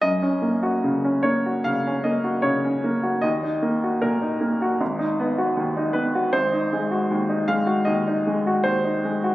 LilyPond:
\new Staff \with { instrumentName = "Grand piano" } { \time 4/4 \key fis \major \tempo 4 = 77 << { dis''4. cis''8 eis''8 dis''8 cis''4 | dis''4 ais'2~ ais'8 b'8 | bis'4. eis''8 dis''4 bis'4 | } \\ { fis,16 cis'16 ais16 fis'16 cis16 cis'16 ais16 fis'16 cis16 cis'16 ais16 fis'16 cis16 cis'16 ais16 fis'16 | dis,16 dis'16 ais16 fis'16 ais,16 dis'16 ais16 fis'16 gis,,16 dis'16 b16 fis'16 dis,16 dis'16 b16 fis'16 | gis,,16 dis'16 gis16 fis'16 dis,16 dis'16 gis16 fis'16 dis,16 dis'16 gis16 fis'16 dis,16 dis'16 gis16 fis'16 | } >> }